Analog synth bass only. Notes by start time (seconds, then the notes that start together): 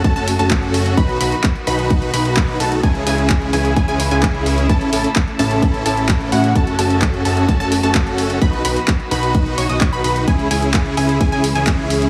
0.04 F#1
0.16 F#1
0.39 F#1
0.97 B1
1.21 B1
1.67 B1
2.14 B1
2.60 B1
2.83 C#2
3.07 C#2
3.53 C#2
3.76 C#2
3.88 C#2
4.11 C#2
4.69 A1
4.93 A1
5.39 A1
5.86 A1
6.32 A2
6.55 F#1
6.79 F#1
7.25 F#1
7.49 F#1
7.60 F#1
7.83 F#1
8.42 B1
8.65 B1
9.11 B1
9.58 B1
9.69 B1
9.81 B1
9.93 B1
10.04 B1
10.28 C#2
10.51 C#2
10.97 C#2
11.21 C#2
11.32 C#2
11.55 C#2